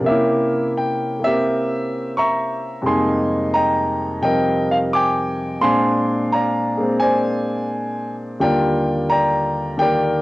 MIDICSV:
0, 0, Header, 1, 2, 480
1, 0, Start_track
1, 0, Key_signature, -3, "minor"
1, 0, Tempo, 694444
1, 43, Time_signature, 4, 2, 24, 8
1, 7063, End_track
2, 0, Start_track
2, 0, Title_t, "Grand piano"
2, 0, Program_c, 0, 0
2, 2, Note_on_c, 0, 48, 57
2, 29, Note_on_c, 0, 58, 53
2, 44, Note_on_c, 0, 76, 74
2, 54, Note_on_c, 0, 61, 46
2, 58, Note_on_c, 0, 67, 59
2, 58, Note_on_c, 0, 70, 57
2, 79, Note_on_c, 0, 64, 58
2, 495, Note_off_c, 0, 76, 0
2, 536, Note_on_c, 0, 79, 72
2, 817, Note_off_c, 0, 58, 0
2, 827, Note_on_c, 0, 58, 42
2, 836, Note_off_c, 0, 79, 0
2, 849, Note_on_c, 0, 60, 44
2, 858, Note_on_c, 0, 76, 94
2, 863, Note_off_c, 0, 67, 0
2, 863, Note_off_c, 0, 70, 0
2, 873, Note_on_c, 0, 67, 56
2, 873, Note_on_c, 0, 70, 58
2, 1458, Note_off_c, 0, 76, 0
2, 1500, Note_on_c, 0, 85, 82
2, 1508, Note_on_c, 0, 82, 63
2, 1513, Note_on_c, 0, 76, 64
2, 1795, Note_off_c, 0, 67, 0
2, 1795, Note_off_c, 0, 70, 0
2, 1942, Note_off_c, 0, 48, 0
2, 1947, Note_off_c, 0, 82, 0
2, 1948, Note_on_c, 0, 41, 53
2, 1950, Note_off_c, 0, 76, 0
2, 1952, Note_on_c, 0, 48, 48
2, 1955, Note_off_c, 0, 58, 0
2, 1957, Note_on_c, 0, 55, 46
2, 1965, Note_on_c, 0, 56, 51
2, 1966, Note_off_c, 0, 60, 0
2, 1968, Note_off_c, 0, 61, 0
2, 1974, Note_on_c, 0, 58, 48
2, 1979, Note_on_c, 0, 84, 86
2, 1980, Note_on_c, 0, 63, 63
2, 1981, Note_off_c, 0, 64, 0
2, 1985, Note_off_c, 0, 85, 0
2, 1985, Note_on_c, 0, 75, 57
2, 1985, Note_on_c, 0, 80, 69
2, 2446, Note_on_c, 0, 82, 86
2, 2447, Note_off_c, 0, 75, 0
2, 2458, Note_on_c, 0, 75, 54
2, 2458, Note_on_c, 0, 79, 51
2, 2465, Note_off_c, 0, 84, 0
2, 2905, Note_off_c, 0, 48, 0
2, 2906, Note_off_c, 0, 80, 0
2, 2911, Note_off_c, 0, 79, 0
2, 2915, Note_off_c, 0, 55, 0
2, 2915, Note_on_c, 0, 48, 47
2, 2922, Note_on_c, 0, 79, 90
2, 2923, Note_on_c, 0, 53, 39
2, 2925, Note_off_c, 0, 75, 0
2, 2926, Note_on_c, 0, 55, 39
2, 2935, Note_on_c, 0, 60, 45
2, 2935, Note_on_c, 0, 75, 65
2, 2936, Note_on_c, 0, 70, 59
2, 2938, Note_off_c, 0, 82, 0
2, 3229, Note_off_c, 0, 79, 0
2, 3259, Note_on_c, 0, 77, 86
2, 3293, Note_off_c, 0, 77, 0
2, 3410, Note_on_c, 0, 86, 100
2, 3422, Note_on_c, 0, 80, 71
2, 3425, Note_on_c, 0, 79, 70
2, 3861, Note_off_c, 0, 75, 0
2, 3862, Note_off_c, 0, 70, 0
2, 3865, Note_off_c, 0, 80, 0
2, 3866, Note_off_c, 0, 79, 0
2, 3872, Note_off_c, 0, 56, 0
2, 3873, Note_off_c, 0, 60, 0
2, 3875, Note_off_c, 0, 41, 0
2, 3879, Note_off_c, 0, 48, 0
2, 3879, Note_on_c, 0, 46, 53
2, 3881, Note_on_c, 0, 84, 98
2, 3882, Note_on_c, 0, 56, 50
2, 3883, Note_off_c, 0, 53, 0
2, 3883, Note_on_c, 0, 60, 53
2, 3884, Note_off_c, 0, 55, 0
2, 3887, Note_on_c, 0, 62, 61
2, 3889, Note_off_c, 0, 58, 0
2, 3890, Note_on_c, 0, 77, 67
2, 3892, Note_off_c, 0, 63, 0
2, 3897, Note_on_c, 0, 80, 65
2, 3901, Note_off_c, 0, 86, 0
2, 4369, Note_off_c, 0, 77, 0
2, 4371, Note_on_c, 0, 82, 79
2, 4376, Note_off_c, 0, 84, 0
2, 4380, Note_on_c, 0, 77, 61
2, 4385, Note_on_c, 0, 74, 56
2, 4669, Note_off_c, 0, 56, 0
2, 4680, Note_on_c, 0, 56, 46
2, 4689, Note_on_c, 0, 58, 37
2, 4692, Note_off_c, 0, 60, 0
2, 4702, Note_on_c, 0, 60, 51
2, 4822, Note_off_c, 0, 80, 0
2, 4836, Note_on_c, 0, 80, 90
2, 4841, Note_off_c, 0, 74, 0
2, 4852, Note_on_c, 0, 74, 59
2, 4855, Note_on_c, 0, 72, 64
2, 4861, Note_off_c, 0, 82, 0
2, 5304, Note_off_c, 0, 77, 0
2, 5621, Note_off_c, 0, 80, 0
2, 5780, Note_off_c, 0, 74, 0
2, 5782, Note_off_c, 0, 72, 0
2, 5801, Note_off_c, 0, 46, 0
2, 5801, Note_off_c, 0, 56, 0
2, 5802, Note_on_c, 0, 39, 49
2, 5805, Note_off_c, 0, 62, 0
2, 5805, Note_on_c, 0, 50, 47
2, 5805, Note_on_c, 0, 55, 46
2, 5806, Note_off_c, 0, 58, 0
2, 5810, Note_on_c, 0, 65, 54
2, 5813, Note_off_c, 0, 60, 0
2, 5813, Note_on_c, 0, 79, 87
2, 5823, Note_on_c, 0, 70, 67
2, 5826, Note_on_c, 0, 74, 60
2, 6287, Note_on_c, 0, 82, 93
2, 6291, Note_off_c, 0, 74, 0
2, 6294, Note_off_c, 0, 79, 0
2, 6301, Note_on_c, 0, 74, 63
2, 6304, Note_on_c, 0, 79, 60
2, 6738, Note_off_c, 0, 82, 0
2, 6745, Note_off_c, 0, 70, 0
2, 6757, Note_off_c, 0, 79, 0
2, 6757, Note_on_c, 0, 51, 44
2, 6767, Note_on_c, 0, 58, 41
2, 6768, Note_on_c, 0, 79, 93
2, 6777, Note_off_c, 0, 74, 0
2, 6777, Note_on_c, 0, 67, 50
2, 6788, Note_on_c, 0, 74, 63
2, 6790, Note_on_c, 0, 70, 66
2, 7063, Note_off_c, 0, 39, 0
2, 7063, Note_off_c, 0, 50, 0
2, 7063, Note_off_c, 0, 51, 0
2, 7063, Note_off_c, 0, 55, 0
2, 7063, Note_off_c, 0, 58, 0
2, 7063, Note_off_c, 0, 65, 0
2, 7063, Note_off_c, 0, 67, 0
2, 7063, Note_off_c, 0, 70, 0
2, 7063, Note_off_c, 0, 74, 0
2, 7063, Note_off_c, 0, 79, 0
2, 7063, End_track
0, 0, End_of_file